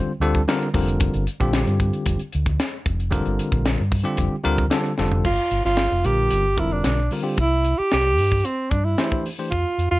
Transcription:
Already playing: tine electric piano D3 G3 C4 F4 C5
0.06 muted fingered electric bass stroke
0.20 fingered electric bass D2, tine electric piano D3 G3 C4 F4 A4, closed hi-hat
0.34 kick, closed hi-hat
0.48 tine electric piano D3 G3 C4 F4 A#4, snare, closed hi-hat
0.62 closed hi-hat
0.74 fingered electric bass F1, tine electric piano D3 G3 C4 F4 A#4, kick, open hi-hat
0.88 closed hi-hat
1.00 kick, closed hi-hat
1.14 fingered electric bass G1, closed hi-hat
1.27 closed hi-hat
1.40 fingered electric bass A#1, tine electric piano D3 G3 C4 F4 G4, kick, closed hi-hat
1.53 snare, closed hi-hat
1.67 fingered electric bass G2, closed hi-hat
1.80 kick, closed hi-hat
1.93 closed hi-hat
2.06 fingered electric bass F1, kick, closed hi-hat
2.19 muted fingered electric bass stroke, closed hi-hat
2.33 fingered electric bass D2, closed hi-hat
2.46 kick, closed hi-hat
2.60 snare, closed hi-hat
2.86 fingered electric bass F1, kick, closed hi-hat
3.00 closed hi-hat
3.11 tine electric piano D3 G3 C4 F4 A#4, kick, closed hi-hat
3.25 fingered electric bass G1, closed hi-hat
3.39 closed hi-hat
3.52 fingered electric bass A#1, kick, closed hi-hat
3.66 snare, closed hi-hat
3.80 fingered electric bass G2
3.92 kick, open hi-hat
4.04 tine electric piano D3 G3 C4 F4 G4, closed hi-hat
4.17 fingered electric bass F1, kick, closed hi-hat
4.33 muted fingered electric bass stroke
4.44 fingered electric bass D2, tine electric piano D3 G3 C4 F4 A#4, closed hi-hat
4.58 kick, closed hi-hat
4.70 tine electric piano D3 G3 C4 F4 A4, snare, closed hi-hat
4.85 closed hi-hat
4.98 fingered electric bass F1, tine electric piano D3 G3 C4 F4 A4, snare
5.12 floor tom
5.24 fingered electric bass G1, alto saxophone F4, kick, crash
5.51 fingered electric bass G1, closed hi-hat
5.65 fingered electric bass G1, alto saxophone F4, snare
5.77 snare, closed hi-hat
5.92 fingered electric bass F1
6.04 fingered electric bass A#1, tine electric piano D3 G3 C4 F4 A#4, alto saxophone G4, closed hi-hat
6.31 fingered electric bass G1, closed hi-hat
6.57 fingered electric bass F1, tine electric piano D3 G3 C4 F4 A#4, alto saxophone E4, kick, closed hi-hat
6.73 alto saxophone D4
6.84 fingered electric bass B1, snare, closed hi-hat
7.11 tine electric piano D3 G3 C4 F4 A#4, open hi-hat
7.23 tine electric piano D3 G3 C4 F4 G4
7.38 fingered electric bass C2, alto saxophone E4, kick, closed hi-hat
7.64 closed hi-hat
7.78 alto saxophone G4, muted fingered electric bass stroke
7.92 fingered electric bass C2, alto saxophone G4, snare, closed hi-hat
8.18 fingered electric bass G2, open hi-hat
8.32 kick
8.45 alto saxophone C4, closed hi-hat
8.71 fingered electric bass G2, alto saxophone D4, kick, closed hi-hat
8.85 alto saxophone E4
8.98 tine electric piano E3 A3 D4 G4 C5, snare, closed hi-hat
9.12 kick
9.26 open hi-hat
9.39 tine electric piano E3 A3 D4 G4 C5
9.51 fingered electric bass F2, alto saxophone F4, kick, closed hi-hat
9.78 fingered electric bass F2, closed hi-hat
9.91 fingered electric bass F2, alto saxophone F4

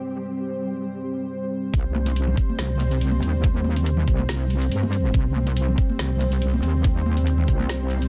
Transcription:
Already playing: synth texture G3 G4, analog synth pad G3 C4 C5
1.74 wobble bass C2, analog synth pad G3 C4 C5, kick, closed hi-hat
1.95 high conga
2.06 closed hi-hat, muted conga
2.16 closed hi-hat
2.27 low conga
2.37 kick, shaker
2.50 high conga
2.58 wobble bass C2, snare, closed hi-hat
2.80 closed hi-hat, muted conga
2.91 closed hi-hat, shaker
3.01 closed hi-hat
3.11 high conga
3.22 wobble bass D#2, closed hi-hat, muted conga
3.44 kick, closed hi-hat
3.64 high conga
3.76 closed hi-hat, muted conga
3.86 closed hi-hat
3.97 low conga
4.08 wobble bass C2, kick, shaker
4.19 high conga
4.29 snare, closed hi-hat
4.50 closed hi-hat
4.61 closed hi-hat, shaker
4.72 wobble bass G2, closed hi-hat
4.83 muted conga, high conga
4.93 closed hi-hat
5.14 wobble bass C2, kick, closed hi-hat
5.36 high conga
5.47 closed hi-hat, muted conga
5.57 closed hi-hat
5.68 low conga
5.78 kick, shaker
5.90 high conga
5.99 wobble bass C2, snare, closed hi-hat
6.20 closed hi-hat, muted conga
6.32 closed hi-hat, shaker
6.42 closed hi-hat
6.54 high conga
6.63 wobble bass D#2, closed hi-hat, muted conga
6.84 kick, closed hi-hat
7.06 high conga
7.17 closed hi-hat, muted conga
7.27 closed hi-hat
7.38 low conga
7.48 wobble bass C2, kick, shaker
7.60 high conga
7.69 snare, closed hi-hat
7.91 closed hi-hat
8.02 closed hi-hat, shaker

